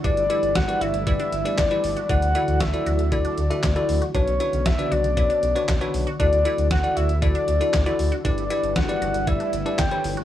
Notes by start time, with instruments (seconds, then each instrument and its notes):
Already playing: string machine D4 E4 A4
0.04 analog synth bass G1, string machine G3 B4, synth arpeggio sound D4, tine electric piano E4 G4 B4 D5, soft synth lead D5, kick, closed hi-hat
0.17 analog synth bass G1, closed hi-hat
0.30 tine electric piano E4 G4 B4 D5, synth arpeggio sound E4, closed hi-hat
0.43 analog synth bass G1, closed hi-hat
0.55 analog synth bass G1, synth arpeggio sound F#4, soft synth lead F#5, kick, snare, closed hi-hat
0.68 tine electric piano E4 G4 B4 D5, closed hi-hat
0.81 analog synth bass G1, synth arpeggio sound F#4, soft synth lead E5, closed hi-hat
0.94 analog synth bass G1, closed hi-hat
1.07 analog synth bass G1, tine electric piano E4 G4 B4 D5, synth arpeggio sound E4, soft synth lead E5, kick, closed hi-hat
1.20 synth arpeggio sound D4, closed hi-hat
1.32 analog synth bass G1, closed hi-hat
1.45 synth arpeggio sound D4, tine electric piano E4 G4 B4 D5, closed hi-hat
1.58 analog synth bass G1, soft synth lead D5, kick, snare, clap, closed hi-hat
1.71 synth arpeggio sound E4, tine electric piano E4 G4 B4 D5, closed hi-hat
1.84 analog synth bass G1, open hi-hat
1.97 synth arpeggio sound F#4, closed hi-hat
2.09 analog synth bass D2, string machine D3 D4 F#4 A4, synth arpeggio sound D4, tine electric piano E4 F#4 A4 D5, soft synth lead F#5, kick, closed hi-hat
2.22 analog synth bass D2, closed hi-hat
2.35 tine electric piano E4 F#4 A4 D5, synth arpeggio sound E4, closed hi-hat
2.48 analog synth bass D2, closed hi-hat
2.60 analog synth bass D2, synth arpeggio sound F#4, soft synth lead E5, kick, snare, closed hi-hat
2.73 tine electric piano E4 F#4 A4 D5, closed hi-hat
2.86 analog synth bass D2, synth arpeggio sound F#4, closed hi-hat
2.99 analog synth bass D2, closed hi-hat
3.12 analog synth bass D2, synth arpeggio sound E4, tine electric piano E4 F#4 A4 D5, soft synth lead D5, kick, closed hi-hat
3.25 synth arpeggio sound D4, closed hi-hat
3.38 analog synth bass D2, closed hi-hat
3.50 synth arpeggio sound D4, tine electric piano E4 F#4 A4 E5, closed hi-hat
3.63 analog synth bass D2, kick, snare, clap, closed hi-hat
3.76 tine electric piano E4 F#4 A4 D5, synth arpeggio sound E4, closed hi-hat
3.89 analog synth bass D2, open hi-hat
4.02 synth arpeggio sound F#4, closed hi-hat
4.15 analog synth bass B1, string machine C#3 B3, synth arpeggio sound D4, tine electric piano D4 F#4 B4 C#5, soft synth lead C#5, kick, closed hi-hat
4.27 analog synth bass B1, closed hi-hat
4.40 tine electric piano D4 F#4 B4 C#5, synth arpeggio sound E4, closed hi-hat
4.53 analog synth bass B1, closed hi-hat
4.66 analog synth bass B1, synth arpeggio sound F#4, soft synth lead E5, kick, snare, closed hi-hat
4.79 tine electric piano D4 F#4 B4 D5, closed hi-hat
4.91 analog synth bass B1, synth arpeggio sound F#4, soft synth lead D5, closed hi-hat
5.04 analog synth bass B1, closed hi-hat
5.17 analog synth bass B1, tine electric piano D4 F#4 B4 C#5, synth arpeggio sound E4, kick, closed hi-hat
5.30 synth arpeggio sound D4, closed hi-hat
5.43 analog synth bass B1, closed hi-hat
5.56 synth arpeggio sound D4, tine electric piano D4 F#4 B4 C#5, closed hi-hat
5.68 analog synth bass B1, kick, snare, clap, closed hi-hat
5.81 tine electric piano D4 F#4 B4 C#5, synth arpeggio sound E4, closed hi-hat
5.94 analog synth bass B1, open hi-hat
6.07 synth arpeggio sound F#4, closed hi-hat
6.20 analog synth bass D2, synth arpeggio sound D4, string machine D4 E4 F#4 A4, tine electric piano E4 F#4 A4 D5, soft synth lead D5, kick, closed hi-hat
6.33 analog synth bass D2, closed hi-hat
6.45 synth arpeggio sound E4, tine electric piano E4 F#4 A4 D5, closed hi-hat
6.58 analog synth bass D2, closed hi-hat
6.71 analog synth bass D2, synth arpeggio sound F#4, soft synth lead F#5, kick, snare, closed hi-hat
6.84 tine electric piano E4 F#4 A4 D5, closed hi-hat
6.97 analog synth bass D2, synth arpeggio sound F#4, soft synth lead E5, closed hi-hat
7.09 analog synth bass D2, closed hi-hat
7.22 analog synth bass D2, synth arpeggio sound E4, tine electric piano E4 F#4 A4 D5, soft synth lead D5, kick, closed hi-hat
7.35 synth arpeggio sound D4, closed hi-hat
7.48 analog synth bass D2, closed hi-hat
7.61 synth arpeggio sound D4, tine electric piano E4 F#4 A4 D5, closed hi-hat
7.74 analog synth bass D2, kick, snare, clap, closed hi-hat
7.86 synth arpeggio sound E4, tine electric piano E4 F#4 A4 D5, closed hi-hat
7.99 analog synth bass D2, open hi-hat
8.12 synth arpeggio sound F#4, closed hi-hat
8.25 analog synth bass G1, string machine G3 E4 B4, synth arpeggio sound D4, tine electric piano E4 G4 B4 D5, soft synth lead D5, kick, closed hi-hat
8.38 analog synth bass G1, closed hi-hat
8.50 synth arpeggio sound E4, tine electric piano E4 G4 B4 D5, closed hi-hat
8.63 analog synth bass G1, closed hi-hat
8.76 analog synth bass G1, synth arpeggio sound F#4, soft synth lead F#5, kick, snare, closed hi-hat
8.89 tine electric piano E4 G4 B4 D5, closed hi-hat
9.02 analog synth bass G1, synth arpeggio sound F#4, closed hi-hat
9.14 analog synth bass G1, closed hi-hat
9.27 analog synth bass G1, synth arpeggio sound E4, tine electric piano E4 G4 B4 D5, soft synth lead E5, kick, closed hi-hat
9.40 synth arpeggio sound D4, closed hi-hat
9.53 analog synth bass G1, closed hi-hat
9.66 synth arpeggio sound D4, tine electric piano E4 G4 B4 D5, closed hi-hat
9.79 analog synth bass G1, soft synth lead G5, kick, snare, clap, closed hi-hat
9.91 synth arpeggio sound E4, tine electric piano E4 G4 B4 C#5, closed hi-hat
10.04 analog synth bass G1, open hi-hat
10.17 synth arpeggio sound F#4, closed hi-hat